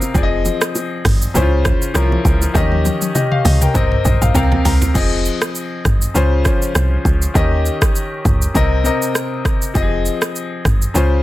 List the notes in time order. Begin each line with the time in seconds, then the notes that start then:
Already playing: C3 C4 A#4 D#5 F5
0.02 high bongo, shaker
0.14 F1 F3 C4 G#4 D5, kick, low conga, shaker
0.23 D#5
0.45 low bongo, shaker
0.61 cross-stick, shaker
0.75 high bongo, shaker
1.05 G#1, kick, cross-stick, mid tom, open hi-hat, low bongo, shaker
1.22 shaker
1.34 C#2 C#3 C#4 E4 C5, low conga, shaker
1.42 F4
1.65 kick, cross-stick, low bongo, low conga, shaker
1.82 shaker
1.94 C2 F3 C#4 E4 A#4, cross-stick, high bongo, shaker
2.02 F4
2.12 low bongo
2.25 C#2, kick, shaker
2.42 high bongo, shaker
2.54 D#2 D#3 C#4 G4 D#5, kick, high tom, low conga, shaker
2.72 high tom
2.85 high tom, low bongo, shaker
3.02 high tom, shaker
3.15 G4 D#5, mid tom, high bongo, shaker
3.32 F5, mid tom
3.45 C#2 D#5, open hi-hat, mid tom, low bongo, shaker
3.62 A#4 G5, mid tom, shaker
3.74 C2 C3 C4 A#4 C5 D#5, kick, mid tom, low conga, shaker
3.92 mid tom
4.05 A#1 D#5, mid tom, low bongo, low conga, shaker
4.22 A#1 F5, mid tom, shaker
4.34 C2 C3 C4 A#4 F5 G5, floor tom, high bongo, shaker
4.52 floor tom, low bongo
4.65 C2 A#5, floor tom, open hi-hat, shaker
4.82 floor tom, high bongo, shaker
4.94 F1 F3 C4 G#4 D#5, kick, crash, shaker
5.25 shaker
5.42 cross-stick, shaker
5.55 shaker
5.85 G#1, kick, cross-stick, mid tom, shaker
6.02 shaker
6.14 C#2 C#3 C#4 F4 C5, shaker
6.44 F3 C#4 F4 C5, kick, cross-stick, shaker
6.62 shaker
6.75 C2, cross-stick, shaker
7.05 C#2, kick, shaker
7.22 shaker
7.34 D#2 D#3 C#4 G4 D#5, kick, shaker
7.66 shaker
7.82 kick, cross-stick, shaker
7.96 shaker
8.25 C#2, kick, mid tom, shaker
8.42 shaker
8.54 C2 C3 C4 A#4 D#5, kick, shaker
8.84 C3 C4 A#4 D#5, shaker
9.02 shaker
9.15 cross-stick, shaker
9.45 kick, cross-stick, shaker
9.62 shaker
9.74 F1 F3 C4 G4 D#5, kick, shaker
9.82 G#4
10.06 shaker
10.22 cross-stick, shaker
10.36 shaker
10.65 G#1, kick, cross-stick, mid tom, shaker
10.82 shaker
10.94 C#2 C#3 C#4 F4 C5, shaker